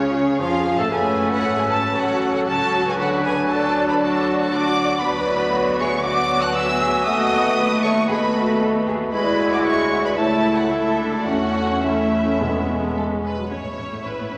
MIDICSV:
0, 0, Header, 1, 11, 480
1, 0, Start_track
1, 0, Tempo, 514139
1, 850, Time_signature, 4, 2, 24, 8
1, 8529, Tempo, 528169
1, 9969, Tempo, 561272
1, 11889, Tempo, 538117
1, 13148, End_track
2, 0, Start_track
2, 0, Title_t, "Violin section"
2, 0, Program_c, 0, 48
2, 0, Note_on_c, 0, 73, 73
2, 344, Note_off_c, 0, 73, 0
2, 362, Note_on_c, 0, 77, 78
2, 719, Note_off_c, 0, 77, 0
2, 732, Note_on_c, 0, 81, 64
2, 842, Note_on_c, 0, 80, 64
2, 851, Note_off_c, 0, 81, 0
2, 1207, Note_off_c, 0, 80, 0
2, 1208, Note_on_c, 0, 78, 81
2, 1447, Note_off_c, 0, 78, 0
2, 1449, Note_on_c, 0, 80, 80
2, 1573, Note_off_c, 0, 80, 0
2, 1578, Note_on_c, 0, 81, 77
2, 1814, Note_off_c, 0, 81, 0
2, 1827, Note_on_c, 0, 78, 81
2, 2180, Note_off_c, 0, 78, 0
2, 2191, Note_on_c, 0, 78, 66
2, 2238, Note_off_c, 0, 78, 0
2, 2304, Note_on_c, 0, 81, 94
2, 2660, Note_off_c, 0, 81, 0
2, 2686, Note_on_c, 0, 80, 64
2, 2730, Note_off_c, 0, 80, 0
2, 2794, Note_on_c, 0, 78, 77
2, 2868, Note_off_c, 0, 78, 0
2, 3030, Note_on_c, 0, 80, 88
2, 3261, Note_off_c, 0, 80, 0
2, 3270, Note_on_c, 0, 81, 87
2, 3618, Note_off_c, 0, 81, 0
2, 3636, Note_on_c, 0, 83, 81
2, 3681, Note_off_c, 0, 83, 0
2, 3749, Note_on_c, 0, 81, 84
2, 4100, Note_off_c, 0, 81, 0
2, 4111, Note_on_c, 0, 81, 81
2, 4225, Note_off_c, 0, 81, 0
2, 4236, Note_on_c, 0, 86, 101
2, 4703, Note_on_c, 0, 83, 85
2, 4704, Note_off_c, 0, 86, 0
2, 5409, Note_off_c, 0, 83, 0
2, 5411, Note_on_c, 0, 85, 88
2, 5640, Note_on_c, 0, 86, 108
2, 5646, Note_off_c, 0, 85, 0
2, 5992, Note_off_c, 0, 86, 0
2, 6010, Note_on_c, 0, 90, 93
2, 6125, Note_off_c, 0, 90, 0
2, 6128, Note_on_c, 0, 88, 103
2, 6591, Note_off_c, 0, 88, 0
2, 6601, Note_on_c, 0, 87, 99
2, 7304, Note_off_c, 0, 87, 0
2, 7320, Note_on_c, 0, 85, 81
2, 7552, Note_on_c, 0, 83, 82
2, 7559, Note_off_c, 0, 85, 0
2, 8028, Note_off_c, 0, 83, 0
2, 8525, Note_on_c, 0, 83, 78
2, 8859, Note_off_c, 0, 83, 0
2, 8887, Note_on_c, 0, 86, 80
2, 8935, Note_off_c, 0, 86, 0
2, 9001, Note_on_c, 0, 85, 90
2, 9354, Note_off_c, 0, 85, 0
2, 9363, Note_on_c, 0, 83, 69
2, 9410, Note_off_c, 0, 83, 0
2, 9478, Note_on_c, 0, 81, 83
2, 9834, Note_on_c, 0, 78, 65
2, 9835, Note_off_c, 0, 81, 0
2, 9960, Note_on_c, 0, 76, 65
2, 9963, Note_off_c, 0, 78, 0
2, 10322, Note_off_c, 0, 76, 0
2, 10328, Note_on_c, 0, 74, 61
2, 10444, Note_on_c, 0, 78, 70
2, 10446, Note_off_c, 0, 74, 0
2, 10923, Note_on_c, 0, 76, 63
2, 10930, Note_off_c, 0, 78, 0
2, 11884, Note_off_c, 0, 76, 0
2, 12371, Note_on_c, 0, 76, 34
2, 13148, Note_off_c, 0, 76, 0
2, 13148, End_track
3, 0, Start_track
3, 0, Title_t, "Flute section"
3, 0, Program_c, 1, 73
3, 0, Note_on_c, 1, 65, 57
3, 104, Note_off_c, 1, 65, 0
3, 373, Note_on_c, 1, 68, 59
3, 724, Note_off_c, 1, 68, 0
3, 727, Note_on_c, 1, 73, 56
3, 848, Note_off_c, 1, 73, 0
3, 853, Note_on_c, 1, 71, 55
3, 1210, Note_on_c, 1, 69, 61
3, 1212, Note_off_c, 1, 71, 0
3, 1453, Note_off_c, 1, 69, 0
3, 1453, Note_on_c, 1, 71, 64
3, 1572, Note_off_c, 1, 71, 0
3, 1578, Note_on_c, 1, 73, 78
3, 1819, Note_off_c, 1, 73, 0
3, 1824, Note_on_c, 1, 69, 74
3, 2169, Note_off_c, 1, 69, 0
3, 2181, Note_on_c, 1, 69, 65
3, 2236, Note_off_c, 1, 69, 0
3, 2665, Note_on_c, 1, 71, 58
3, 2783, Note_off_c, 1, 71, 0
3, 2785, Note_on_c, 1, 69, 62
3, 3024, Note_off_c, 1, 69, 0
3, 3024, Note_on_c, 1, 71, 66
3, 3258, Note_off_c, 1, 71, 0
3, 3265, Note_on_c, 1, 74, 67
3, 3614, Note_off_c, 1, 74, 0
3, 3625, Note_on_c, 1, 74, 69
3, 3737, Note_off_c, 1, 74, 0
3, 3748, Note_on_c, 1, 74, 80
3, 4100, Note_off_c, 1, 74, 0
3, 4109, Note_on_c, 1, 73, 70
3, 4162, Note_off_c, 1, 73, 0
3, 4229, Note_on_c, 1, 78, 78
3, 4692, Note_off_c, 1, 78, 0
3, 4709, Note_on_c, 1, 74, 76
3, 5398, Note_off_c, 1, 74, 0
3, 5415, Note_on_c, 1, 76, 86
3, 5648, Note_off_c, 1, 76, 0
3, 5652, Note_on_c, 1, 78, 83
3, 6005, Note_off_c, 1, 78, 0
3, 6007, Note_on_c, 1, 81, 73
3, 6116, Note_on_c, 1, 80, 81
3, 6124, Note_off_c, 1, 81, 0
3, 6595, Note_off_c, 1, 80, 0
3, 6596, Note_on_c, 1, 78, 91
3, 7046, Note_off_c, 1, 78, 0
3, 7323, Note_on_c, 1, 76, 84
3, 7555, Note_on_c, 1, 75, 72
3, 7556, Note_off_c, 1, 76, 0
3, 8030, Note_off_c, 1, 75, 0
3, 8525, Note_on_c, 1, 74, 73
3, 8859, Note_off_c, 1, 74, 0
3, 8887, Note_on_c, 1, 78, 70
3, 8941, Note_off_c, 1, 78, 0
3, 8999, Note_on_c, 1, 76, 77
3, 9353, Note_off_c, 1, 76, 0
3, 9356, Note_on_c, 1, 74, 63
3, 9473, Note_on_c, 1, 73, 73
3, 9477, Note_off_c, 1, 74, 0
3, 9833, Note_off_c, 1, 73, 0
3, 9841, Note_on_c, 1, 69, 58
3, 9948, Note_off_c, 1, 69, 0
3, 9959, Note_on_c, 1, 69, 47
3, 10314, Note_off_c, 1, 69, 0
3, 10323, Note_on_c, 1, 66, 54
3, 10443, Note_on_c, 1, 69, 64
3, 10446, Note_off_c, 1, 66, 0
3, 10929, Note_off_c, 1, 69, 0
3, 10939, Note_on_c, 1, 69, 53
3, 11874, Note_off_c, 1, 69, 0
3, 13148, End_track
4, 0, Start_track
4, 0, Title_t, "Violin section"
4, 0, Program_c, 2, 48
4, 0, Note_on_c, 2, 61, 60
4, 347, Note_off_c, 2, 61, 0
4, 362, Note_on_c, 2, 65, 69
4, 719, Note_off_c, 2, 65, 0
4, 732, Note_on_c, 2, 69, 60
4, 780, Note_off_c, 2, 69, 0
4, 849, Note_on_c, 2, 68, 60
4, 1198, Note_on_c, 2, 66, 64
4, 1203, Note_off_c, 2, 68, 0
4, 1442, Note_off_c, 2, 66, 0
4, 1442, Note_on_c, 2, 68, 59
4, 1566, Note_on_c, 2, 69, 64
4, 1569, Note_off_c, 2, 68, 0
4, 1641, Note_off_c, 2, 69, 0
4, 1804, Note_on_c, 2, 66, 66
4, 2155, Note_off_c, 2, 66, 0
4, 2166, Note_on_c, 2, 66, 55
4, 2294, Note_off_c, 2, 66, 0
4, 2295, Note_on_c, 2, 69, 68
4, 2655, Note_off_c, 2, 69, 0
4, 2668, Note_on_c, 2, 68, 65
4, 2787, Note_off_c, 2, 68, 0
4, 2795, Note_on_c, 2, 66, 75
4, 3024, Note_off_c, 2, 66, 0
4, 3037, Note_on_c, 2, 68, 59
4, 3112, Note_off_c, 2, 68, 0
4, 3262, Note_on_c, 2, 69, 66
4, 3615, Note_off_c, 2, 69, 0
4, 3629, Note_on_c, 2, 71, 67
4, 3676, Note_off_c, 2, 71, 0
4, 3749, Note_on_c, 2, 69, 68
4, 4092, Note_off_c, 2, 69, 0
4, 4103, Note_on_c, 2, 69, 66
4, 4221, Note_off_c, 2, 69, 0
4, 4228, Note_on_c, 2, 74, 84
4, 4699, Note_on_c, 2, 71, 87
4, 4700, Note_off_c, 2, 74, 0
4, 5393, Note_off_c, 2, 71, 0
4, 5416, Note_on_c, 2, 73, 74
4, 5491, Note_off_c, 2, 73, 0
4, 5648, Note_on_c, 2, 74, 85
4, 5996, Note_off_c, 2, 74, 0
4, 6001, Note_on_c, 2, 78, 71
4, 6121, Note_off_c, 2, 78, 0
4, 6123, Note_on_c, 2, 76, 77
4, 6598, Note_off_c, 2, 76, 0
4, 6605, Note_on_c, 2, 75, 98
4, 7317, Note_on_c, 2, 73, 74
4, 7321, Note_off_c, 2, 75, 0
4, 7392, Note_off_c, 2, 73, 0
4, 7555, Note_on_c, 2, 71, 78
4, 8030, Note_off_c, 2, 71, 0
4, 8519, Note_on_c, 2, 71, 80
4, 8856, Note_off_c, 2, 71, 0
4, 8878, Note_on_c, 2, 74, 70
4, 8998, Note_on_c, 2, 73, 59
4, 9002, Note_off_c, 2, 74, 0
4, 9350, Note_on_c, 2, 71, 65
4, 9360, Note_off_c, 2, 73, 0
4, 9476, Note_off_c, 2, 71, 0
4, 9476, Note_on_c, 2, 69, 70
4, 9841, Note_off_c, 2, 69, 0
4, 9844, Note_on_c, 2, 66, 52
4, 9966, Note_off_c, 2, 66, 0
4, 9967, Note_on_c, 2, 64, 53
4, 10325, Note_off_c, 2, 64, 0
4, 10328, Note_on_c, 2, 62, 62
4, 10446, Note_on_c, 2, 66, 80
4, 10448, Note_off_c, 2, 62, 0
4, 10931, Note_off_c, 2, 66, 0
4, 10940, Note_on_c, 2, 64, 51
4, 11885, Note_on_c, 2, 69, 59
4, 11893, Note_off_c, 2, 64, 0
4, 11956, Note_off_c, 2, 69, 0
4, 12136, Note_on_c, 2, 71, 58
4, 12369, Note_on_c, 2, 73, 61
4, 12376, Note_off_c, 2, 71, 0
4, 12840, Note_off_c, 2, 73, 0
4, 12850, Note_on_c, 2, 71, 46
4, 13148, Note_off_c, 2, 71, 0
4, 13148, End_track
5, 0, Start_track
5, 0, Title_t, "Cello section"
5, 0, Program_c, 3, 48
5, 0, Note_on_c, 3, 65, 64
5, 123, Note_on_c, 3, 68, 65
5, 125, Note_off_c, 3, 65, 0
5, 841, Note_on_c, 3, 71, 66
5, 846, Note_off_c, 3, 68, 0
5, 1794, Note_off_c, 3, 71, 0
5, 1823, Note_on_c, 3, 69, 60
5, 2307, Note_off_c, 3, 69, 0
5, 2315, Note_on_c, 3, 66, 66
5, 2790, Note_on_c, 3, 71, 77
5, 2791, Note_off_c, 3, 66, 0
5, 3265, Note_off_c, 3, 71, 0
5, 3265, Note_on_c, 3, 69, 67
5, 3743, Note_off_c, 3, 69, 0
5, 3747, Note_on_c, 3, 66, 82
5, 4682, Note_off_c, 3, 66, 0
5, 4698, Note_on_c, 3, 62, 67
5, 4929, Note_off_c, 3, 62, 0
5, 4931, Note_on_c, 3, 64, 66
5, 5164, Note_off_c, 3, 64, 0
5, 5164, Note_on_c, 3, 66, 77
5, 5403, Note_on_c, 3, 68, 69
5, 5404, Note_off_c, 3, 66, 0
5, 5642, Note_off_c, 3, 68, 0
5, 5642, Note_on_c, 3, 66, 77
5, 6111, Note_off_c, 3, 66, 0
5, 6118, Note_on_c, 3, 69, 73
5, 6192, Note_off_c, 3, 69, 0
5, 6351, Note_on_c, 3, 68, 59
5, 6426, Note_off_c, 3, 68, 0
5, 6594, Note_on_c, 3, 66, 74
5, 7063, Note_off_c, 3, 66, 0
5, 7065, Note_on_c, 3, 71, 73
5, 7311, Note_on_c, 3, 69, 56
5, 7312, Note_off_c, 3, 71, 0
5, 7385, Note_off_c, 3, 69, 0
5, 7544, Note_on_c, 3, 68, 76
5, 7619, Note_off_c, 3, 68, 0
5, 7793, Note_on_c, 3, 66, 66
5, 8033, Note_off_c, 3, 66, 0
5, 8034, Note_on_c, 3, 69, 65
5, 8109, Note_off_c, 3, 69, 0
5, 8281, Note_on_c, 3, 68, 67
5, 8356, Note_off_c, 3, 68, 0
5, 8526, Note_on_c, 3, 66, 67
5, 9462, Note_off_c, 3, 66, 0
5, 9482, Note_on_c, 3, 64, 68
5, 9966, Note_on_c, 3, 69, 64
5, 9968, Note_off_c, 3, 64, 0
5, 10436, Note_off_c, 3, 69, 0
5, 10443, Note_on_c, 3, 61, 53
5, 12100, Note_off_c, 3, 61, 0
5, 12381, Note_on_c, 3, 45, 50
5, 12429, Note_off_c, 3, 45, 0
5, 12619, Note_on_c, 3, 45, 30
5, 12667, Note_off_c, 3, 45, 0
5, 12740, Note_on_c, 3, 45, 31
5, 12786, Note_off_c, 3, 45, 0
5, 12858, Note_on_c, 3, 45, 43
5, 12904, Note_off_c, 3, 45, 0
5, 12980, Note_on_c, 3, 45, 32
5, 13025, Note_off_c, 3, 45, 0
5, 13098, Note_on_c, 3, 45, 28
5, 13144, Note_off_c, 3, 45, 0
5, 13148, End_track
6, 0, Start_track
6, 0, Title_t, "Clarinet"
6, 0, Program_c, 4, 71
6, 0, Note_on_c, 4, 61, 60
6, 371, Note_on_c, 4, 65, 62
6, 385, Note_off_c, 4, 61, 0
6, 720, Note_off_c, 4, 65, 0
6, 726, Note_on_c, 4, 69, 59
6, 842, Note_off_c, 4, 69, 0
6, 847, Note_on_c, 4, 69, 55
6, 1815, Note_on_c, 4, 66, 54
6, 1829, Note_off_c, 4, 69, 0
6, 4542, Note_off_c, 4, 66, 0
6, 4700, Note_on_c, 4, 66, 66
6, 8493, Note_off_c, 4, 66, 0
6, 8522, Note_on_c, 4, 64, 63
6, 9443, Note_off_c, 4, 64, 0
6, 9485, Note_on_c, 4, 64, 55
6, 9960, Note_off_c, 4, 64, 0
6, 9973, Note_on_c, 4, 64, 58
6, 10445, Note_on_c, 4, 61, 50
6, 10458, Note_off_c, 4, 64, 0
6, 10922, Note_off_c, 4, 61, 0
6, 10927, Note_on_c, 4, 61, 48
6, 11411, Note_on_c, 4, 59, 52
6, 11424, Note_off_c, 4, 61, 0
6, 12136, Note_off_c, 4, 59, 0
6, 13148, End_track
7, 0, Start_track
7, 0, Title_t, "Viola section"
7, 0, Program_c, 5, 48
7, 0, Note_on_c, 5, 49, 73
7, 350, Note_off_c, 5, 49, 0
7, 362, Note_on_c, 5, 53, 60
7, 719, Note_off_c, 5, 53, 0
7, 725, Note_on_c, 5, 57, 69
7, 839, Note_off_c, 5, 57, 0
7, 848, Note_on_c, 5, 61, 59
7, 850, Note_on_c, 5, 57, 61
7, 1780, Note_off_c, 5, 61, 0
7, 1781, Note_off_c, 5, 57, 0
7, 1820, Note_on_c, 5, 61, 53
7, 1824, Note_on_c, 5, 54, 64
7, 2292, Note_off_c, 5, 54, 0
7, 2293, Note_off_c, 5, 61, 0
7, 2303, Note_on_c, 5, 54, 59
7, 2304, Note_on_c, 5, 61, 60
7, 2776, Note_off_c, 5, 54, 0
7, 2777, Note_off_c, 5, 61, 0
7, 2790, Note_on_c, 5, 62, 57
7, 2793, Note_on_c, 5, 54, 55
7, 3254, Note_off_c, 5, 62, 0
7, 3256, Note_off_c, 5, 54, 0
7, 3265, Note_on_c, 5, 62, 62
7, 3266, Note_on_c, 5, 54, 70
7, 3730, Note_off_c, 5, 54, 0
7, 3731, Note_off_c, 5, 62, 0
7, 3741, Note_on_c, 5, 54, 62
7, 3743, Note_on_c, 5, 62, 64
7, 4214, Note_off_c, 5, 54, 0
7, 4215, Note_off_c, 5, 62, 0
7, 4226, Note_on_c, 5, 54, 64
7, 4228, Note_on_c, 5, 62, 65
7, 4686, Note_off_c, 5, 54, 0
7, 4691, Note_off_c, 5, 62, 0
7, 4697, Note_on_c, 5, 54, 64
7, 4698, Note_on_c, 5, 59, 69
7, 5624, Note_off_c, 5, 54, 0
7, 5628, Note_off_c, 5, 59, 0
7, 5639, Note_on_c, 5, 59, 65
7, 5642, Note_on_c, 5, 54, 70
7, 6576, Note_off_c, 5, 59, 0
7, 6577, Note_off_c, 5, 54, 0
7, 6589, Note_on_c, 5, 59, 68
7, 6592, Note_on_c, 5, 57, 65
7, 7534, Note_off_c, 5, 57, 0
7, 7534, Note_off_c, 5, 59, 0
7, 7545, Note_on_c, 5, 57, 65
7, 7545, Note_on_c, 5, 59, 68
7, 8503, Note_off_c, 5, 57, 0
7, 8503, Note_off_c, 5, 59, 0
7, 8521, Note_on_c, 5, 56, 67
7, 8523, Note_on_c, 5, 64, 65
7, 9442, Note_off_c, 5, 56, 0
7, 9444, Note_off_c, 5, 64, 0
7, 9466, Note_on_c, 5, 64, 52
7, 9469, Note_on_c, 5, 57, 59
7, 9943, Note_off_c, 5, 64, 0
7, 9945, Note_off_c, 5, 57, 0
7, 9954, Note_on_c, 5, 64, 53
7, 9956, Note_on_c, 5, 57, 50
7, 10194, Note_off_c, 5, 64, 0
7, 10195, Note_on_c, 5, 62, 43
7, 10428, Note_off_c, 5, 57, 0
7, 10436, Note_off_c, 5, 62, 0
7, 10438, Note_on_c, 5, 57, 50
7, 10438, Note_on_c, 5, 61, 53
7, 10910, Note_off_c, 5, 57, 0
7, 10913, Note_off_c, 5, 61, 0
7, 10921, Note_on_c, 5, 57, 53
7, 10923, Note_on_c, 5, 61, 59
7, 11398, Note_off_c, 5, 57, 0
7, 11399, Note_off_c, 5, 61, 0
7, 11408, Note_on_c, 5, 56, 48
7, 11412, Note_on_c, 5, 59, 51
7, 12194, Note_off_c, 5, 56, 0
7, 12195, Note_off_c, 5, 59, 0
7, 12371, Note_on_c, 5, 64, 37
7, 12375, Note_on_c, 5, 61, 41
7, 12424, Note_off_c, 5, 61, 0
7, 12611, Note_on_c, 5, 61, 29
7, 12660, Note_off_c, 5, 61, 0
7, 12736, Note_on_c, 5, 57, 35
7, 12783, Note_off_c, 5, 57, 0
7, 12855, Note_on_c, 5, 61, 53
7, 12902, Note_off_c, 5, 61, 0
7, 12981, Note_on_c, 5, 59, 32
7, 13026, Note_off_c, 5, 59, 0
7, 13086, Note_on_c, 5, 61, 29
7, 13134, Note_off_c, 5, 61, 0
7, 13148, Note_off_c, 5, 64, 0
7, 13148, End_track
8, 0, Start_track
8, 0, Title_t, "French horn section"
8, 0, Program_c, 6, 60
8, 0, Note_on_c, 6, 49, 55
8, 355, Note_off_c, 6, 49, 0
8, 384, Note_on_c, 6, 53, 60
8, 737, Note_off_c, 6, 53, 0
8, 745, Note_on_c, 6, 57, 61
8, 838, Note_off_c, 6, 57, 0
8, 849, Note_on_c, 6, 57, 59
8, 851, Note_on_c, 6, 61, 56
8, 1780, Note_off_c, 6, 57, 0
8, 1820, Note_on_c, 6, 54, 63
8, 2750, Note_off_c, 6, 61, 0
8, 2792, Note_on_c, 6, 62, 69
8, 4540, Note_off_c, 6, 54, 0
8, 4540, Note_off_c, 6, 62, 0
8, 4699, Note_on_c, 6, 54, 70
8, 4700, Note_on_c, 6, 59, 67
8, 5607, Note_off_c, 6, 54, 0
8, 5607, Note_off_c, 6, 59, 0
8, 5652, Note_on_c, 6, 54, 71
8, 5652, Note_on_c, 6, 59, 67
8, 6575, Note_off_c, 6, 59, 0
8, 6583, Note_off_c, 6, 54, 0
8, 6586, Note_on_c, 6, 59, 74
8, 6588, Note_on_c, 6, 57, 74
8, 7532, Note_off_c, 6, 59, 0
8, 7539, Note_off_c, 6, 57, 0
8, 7550, Note_on_c, 6, 57, 67
8, 7552, Note_on_c, 6, 59, 72
8, 8506, Note_off_c, 6, 57, 0
8, 8507, Note_off_c, 6, 59, 0
8, 8513, Note_on_c, 6, 64, 69
8, 8514, Note_on_c, 6, 56, 69
8, 9439, Note_off_c, 6, 56, 0
8, 9439, Note_off_c, 6, 64, 0
8, 9473, Note_on_c, 6, 64, 62
8, 9475, Note_on_c, 6, 57, 55
8, 9951, Note_off_c, 6, 64, 0
8, 9953, Note_off_c, 6, 57, 0
8, 9962, Note_on_c, 6, 64, 54
8, 9964, Note_on_c, 6, 57, 56
8, 10432, Note_off_c, 6, 57, 0
8, 10434, Note_off_c, 6, 64, 0
8, 10435, Note_on_c, 6, 61, 57
8, 10442, Note_on_c, 6, 57, 59
8, 10912, Note_off_c, 6, 57, 0
8, 10915, Note_off_c, 6, 61, 0
8, 10923, Note_on_c, 6, 57, 57
8, 11263, Note_off_c, 6, 57, 0
8, 11291, Note_on_c, 6, 61, 52
8, 11412, Note_off_c, 6, 61, 0
8, 11413, Note_on_c, 6, 59, 69
8, 11668, Note_off_c, 6, 59, 0
8, 11774, Note_on_c, 6, 57, 64
8, 11826, Note_off_c, 6, 57, 0
8, 11880, Note_on_c, 6, 56, 66
8, 12248, Note_off_c, 6, 56, 0
8, 12258, Note_on_c, 6, 54, 50
8, 12313, Note_off_c, 6, 54, 0
8, 13148, End_track
9, 0, Start_track
9, 0, Title_t, "Bassoon"
9, 0, Program_c, 7, 70
9, 0, Note_on_c, 7, 49, 80
9, 350, Note_off_c, 7, 49, 0
9, 362, Note_on_c, 7, 53, 62
9, 725, Note_on_c, 7, 57, 64
9, 739, Note_off_c, 7, 53, 0
9, 842, Note_off_c, 7, 57, 0
9, 848, Note_on_c, 7, 54, 54
9, 4539, Note_off_c, 7, 54, 0
9, 4698, Note_on_c, 7, 54, 58
9, 6560, Note_off_c, 7, 54, 0
9, 6588, Note_on_c, 7, 57, 62
9, 8487, Note_off_c, 7, 57, 0
9, 8516, Note_on_c, 7, 56, 62
9, 9440, Note_off_c, 7, 56, 0
9, 9466, Note_on_c, 7, 57, 48
9, 9942, Note_off_c, 7, 57, 0
9, 9948, Note_on_c, 7, 57, 57
9, 10427, Note_off_c, 7, 57, 0
9, 10431, Note_on_c, 7, 57, 53
9, 10913, Note_off_c, 7, 57, 0
9, 10926, Note_on_c, 7, 57, 56
9, 11407, Note_on_c, 7, 56, 46
9, 11420, Note_off_c, 7, 57, 0
9, 12133, Note_off_c, 7, 56, 0
9, 13148, End_track
10, 0, Start_track
10, 0, Title_t, "Timpani"
10, 0, Program_c, 8, 47
10, 11414, Note_on_c, 8, 40, 77
10, 12101, Note_off_c, 8, 40, 0
10, 13148, End_track
11, 0, Start_track
11, 0, Title_t, "Double bass section"
11, 0, Program_c, 10, 48
11, 0, Note_on_c, 10, 37, 64
11, 347, Note_off_c, 10, 37, 0
11, 363, Note_on_c, 10, 41, 68
11, 720, Note_off_c, 10, 41, 0
11, 728, Note_on_c, 10, 45, 60
11, 843, Note_on_c, 10, 30, 61
11, 849, Note_off_c, 10, 45, 0
11, 1295, Note_off_c, 10, 30, 0
11, 1325, Note_on_c, 10, 32, 51
11, 1805, Note_off_c, 10, 32, 0
11, 1814, Note_on_c, 10, 33, 57
11, 2293, Note_off_c, 10, 33, 0
11, 2297, Note_on_c, 10, 37, 64
11, 2783, Note_off_c, 10, 37, 0
11, 2784, Note_on_c, 10, 38, 67
11, 4686, Note_off_c, 10, 38, 0
11, 4698, Note_on_c, 10, 38, 72
11, 6560, Note_off_c, 10, 38, 0
11, 6590, Note_on_c, 10, 39, 77
11, 8488, Note_off_c, 10, 39, 0
11, 8520, Note_on_c, 10, 38, 66
11, 9442, Note_off_c, 10, 38, 0
11, 9476, Note_on_c, 10, 37, 62
11, 10444, Note_off_c, 10, 37, 0
11, 10446, Note_on_c, 10, 40, 57
11, 12160, Note_off_c, 10, 40, 0
11, 12380, Note_on_c, 10, 33, 50
11, 12428, Note_off_c, 10, 33, 0
11, 12618, Note_on_c, 10, 33, 30
11, 12666, Note_off_c, 10, 33, 0
11, 12853, Note_on_c, 10, 33, 45
11, 12901, Note_off_c, 10, 33, 0
11, 13088, Note_on_c, 10, 33, 31
11, 13136, Note_off_c, 10, 33, 0
11, 13148, End_track
0, 0, End_of_file